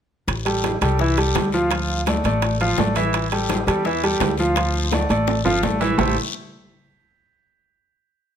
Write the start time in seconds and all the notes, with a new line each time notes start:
0.28 A1, high bongo, high conga, high timbale, long guiro
0.45 G3 G4 A4, high conga, high timbale
0.64 high bongo, high conga, high timbale, low timbale, short guiro
0.81 C2 G3 G4 A4, high bongo, high conga, high timbale, short guiro
0.99 E3 E4 E5, high bongo, high conga, long guiro
1.17 G3 G4 A4, high bongo, high conga, high timbale
1.35 D2, high bongo, low bongo, high conga, high timbale, low timbale, short guiro
1.52 F3 F4 F5, high bongo, short guiro
1.71 F3 F4 F5, high bongo, high conga, high timbale, long guiro
1.89 high bongo, high conga
2.06 A3 A4 D5, high bongo, high conga, high timbale, low timbale, short guiro
2.24 A1 A3 A4 D5, high conga, high timbale, short guiro
2.42 high bongo, high conga, high timbale, long guiro
2.61 F3 F4 F5, high bongo, high conga, high timbale
2.78 A1 A3 A4 D5, high bongo, low bongo, high conga, low timbale, short guiro
2.95 E3 E4 E5, high bongo, high conga, high timbale, short guiro
3.13 high bongo, high conga, high timbale, long guiro
3.32 G3 G4 A4, high conga, high timbale
3.49 high bongo, high conga, high timbale, low timbale, short guiro
3.67 E2 G3 G4 A4, high bongo, high conga, high timbale, short guiro
3.85 E3 E4 E5, high bongo, high conga, long guiro
4.03 G3 G4 A4, high bongo, high conga, high timbale
4.20 D2, high bongo, low bongo, high conga, high timbale, low timbale, short guiro
4.38 F3 F4 F5, high bongo, high conga, short guiro
4.56 F3 F4 F5, high bongo, high conga, high timbale, long guiro
4.74 high bongo, high conga
4.92 A3 A4 D5, high bongo, high conga, high timbale, low timbale, short guiro
5.09 A1 A3 A4 D5, high conga, high timbale, short guiro
5.27 high bongo, high conga, high timbale, long guiro
5.45 G1 F3 F4 F5, high bongo, high timbale
5.63 A1 A3 A4 D5, high bongo, low bongo, high conga, low timbale, short guiro
5.80 E3 E4 E5, high bongo, high conga, low timbale, short guiro
5.98 A1 A3 E4 G4 A4 C5 E5, low bongo, low conga, low timbale, long guiro